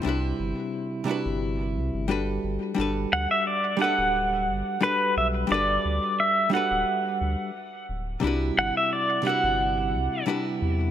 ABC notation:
X:1
M:4/4
L:1/16
Q:1/4=88
K:G
V:1 name="Pedal steel guitar"
z16 | z2 f e d2 f6 B2 e2 | d4 e2 f8 z2 | z2 f e d2 f6 z4 |]
V:2 name="Hollow-body jazz guitar"
[C,G,DEFB]6 [C,G,DEFB]6 [G,DFAB]4 | [G,DFAB]6 [G,DFAB]6 [G,DFAB]4 | [G,DFAB]6 [G,DFAB]6 z4 | [C,G,DEFB]6 [C,G,DEFB]6 [C,G,DEFB]4 |]
V:3 name="Sub bass" clef=bass
C,,2 G,,, z4 G,,,3 C,, G,,,3 G,,, z | G,,,2 D,, z4 D,,,3 G,,, z3 B,,,2 | G,,,2 D,, z4 D,,, z2 D,, z3 D,,,2 | C,,2 G,,, z4 G,,,3 C,, z3 E,,2 |]